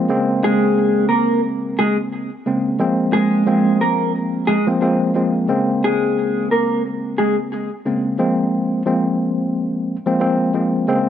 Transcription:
0.09 2.28 C#3 medium
0.09 2.29 G#3 medium
0.09 2.29 A#3 medium
0.09 2.29 C4 loud
0.44 1.08 G#3 medium
0.44 1.07 G#4 medium
1.09 1.41 A#3 medium
1.09 1.40 A#4 medium
1.79 1.96 G#3 medium
1.79 1.96 G#4 medium
2.46 2.77 C#3 medium
2.46 2.78 G#3 medium
2.46 2.78 A#3 medium
2.46 2.78 C4 medium
2.79 3.42 F3 medium
2.79 3.42 G#3 medium
2.79 3.43 A#3 medium
2.79 3.43 C4 loud
3.13 3.77 G#3 medium
3.13 3.77 G#4 medium
3.46 4.56 F3 medium
3.46 4.56 G#3 medium
3.46 4.57 A#3 medium
3.46 4.57 C4 loud
3.81 4.12 A#3 medium
3.81 4.11 A#4 medium
4.47 4.65 G#3 medium
4.47 4.65 G#4 medium
4.67 4.80 F3 medium
4.67 4.80 G#3 medium
4.67 4.80 A#3 medium
4.67 4.81 C4 loud
4.81 5.13 F3 medium
4.81 5.13 G#3 medium
4.81 5.13 A#3 medium
4.81 5.13 C4 medium
5.15 5.47 F3 medium
5.15 5.47 G#3 medium
5.15 5.47 A#3 medium
5.15 5.47 C4 medium
5.48 7.68 C#3 medium
5.48 7.68 G#3 medium
5.48 7.68 A#3 medium
5.48 7.68 C4 loud
5.84 6.48 G#3 medium
5.84 6.47 G#4 medium
6.51 6.82 A#3 medium
6.51 6.81 A#4 medium
7.18 7.36 G#3 medium
7.18 7.35 G#4 medium
7.85 8.17 C#3 medium
7.85 8.17 G#3 medium
7.85 8.17 A#3 medium
7.85 8.17 C4 medium
8.18 8.81 F3 medium
8.18 8.82 G#3 medium
8.18 8.82 A#3 medium
8.18 8.82 C4 loud
8.86 9.96 F3 medium
8.86 9.96 G#3 medium
8.86 9.96 A#3 medium
8.86 9.96 C4 loud
10.06 10.19 F3 medium
10.06 10.19 G#3 medium
10.06 10.20 A#3 medium
10.06 10.20 C4 loud
10.20 10.52 F3 medium
10.20 10.52 G#3 medium
10.20 10.52 A#3 medium
10.20 10.53 C4 medium
10.54 10.86 F3 medium
10.54 10.86 G#3 medium
10.54 10.86 A#3 medium
10.54 10.87 C4 medium
10.88 11.09 C#3 medium
10.88 11.09 G#3 medium
10.88 11.09 A#3 medium
10.88 11.09 C4 loud

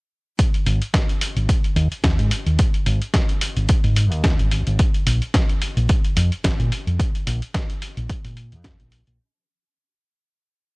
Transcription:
0.39 kick loud
0.39 closed hi-hat loud
0.54 closed hi-hat soft
0.66 0.79 G#1 loud
0.66 open hi-hat loud
0.82 closed hi-hat soft
0.94 kick loud
0.94 snare loud
0.94 closed hi-hat medium
1.09 closed hi-hat soft
1.21 open hi-hat loud
1.36 1.47 G#1 medium
1.36 closed hi-hat soft
1.49 kick loud
1.49 closed hi-hat loud
1.64 closed hi-hat soft
1.76 1.89 D#2 loud
1.76 open hi-hat loud
1.91 muted fingered electric bass stroke soft
1.91 closed hi-hat soft
2.04 2.17 D#2 medium
2.04 kick loud
2.04 snare loud
2.04 closed hi-hat medium
2.19 2.29 G#2 loud
2.19 closed hi-hat soft
2.31 open hi-hat loud
2.46 2.57 D#2 medium
2.46 closed hi-hat soft
2.59 kick loud
2.59 closed hi-hat medium
2.74 closed hi-hat soft
2.86 2.99 G#1 loud
2.86 open hi-hat loud
3.02 closed hi-hat soft
3.14 kick loud
3.14 snare loud
3.14 closed hi-hat medium
3.29 closed hi-hat soft
3.41 open hi-hat loud
3.57 3.67 G#1 medium
3.57 closed hi-hat soft
3.69 kick loud
3.69 closed hi-hat medium
3.84 4.12 G#2 medium
3.84 open hi-hat medium
3.96 open hi-hat loud
4.12 4.34 D#2 medium
4.12 closed hi-hat soft
4.24 kick loud
4.24 snare loud
4.24 closed hi-hat medium
4.39 4.62 G#1 medium
4.39 closed hi-hat soft
4.51 open hi-hat loud
4.67 4.77 G#1 medium
4.67 closed hi-hat soft
4.79 kick loud
4.79 closed hi-hat medium
4.94 closed hi-hat soft
5.07 5.19 A#1 loud
5.07 open hi-hat loud
5.22 closed hi-hat soft
5.34 kick loud
5.34 snare loud
5.34 closed hi-hat medium
5.49 closed hi-hat soft
5.62 open hi-hat loud
5.77 5.87 A#1 medium
5.77 closed hi-hat soft
5.89 kick loud
5.89 closed hi-hat medium
6.04 closed hi-hat soft
6.17 6.29 F2 loud
6.17 open hi-hat loud
6.32 muted fingered electric bass stroke soft
6.32 closed hi-hat soft
6.44 6.57 G#1 medium
6.44 kick loud
6.44 snare loud
6.44 closed hi-hat medium
6.59 6.70 A#2 loud
6.59 closed hi-hat soft
6.72 open hi-hat loud
6.87 6.97 F2 medium
6.87 closed hi-hat soft
6.99 kick loud
6.99 closed hi-hat medium
7.15 closed hi-hat soft
7.27 7.39 A#1 loud
7.27 open hi-hat loud
7.42 closed hi-hat soft
7.54 kick loud
7.54 snare loud
7.54 closed hi-hat medium
7.70 closed hi-hat soft
7.82 open hi-hat loud
7.97 8.07 A#1 medium
7.97 closed hi-hat soft
8.09 kick loud
8.09 closed hi-hat medium
8.25 8.54 A#2 medium
8.25 open hi-hat medium
8.37 open hi-hat loud
8.52 8.74 F2 medium
8.52 closed hi-hat soft
8.64 kick loud
8.64 snare loud
8.64 closed hi-hat medium
8.80 9.02 A#1 loud
8.80 closed hi-hat soft
8.92 open hi-hat loud
9.07 9.17 A#1 loud
9.07 closed hi-hat soft

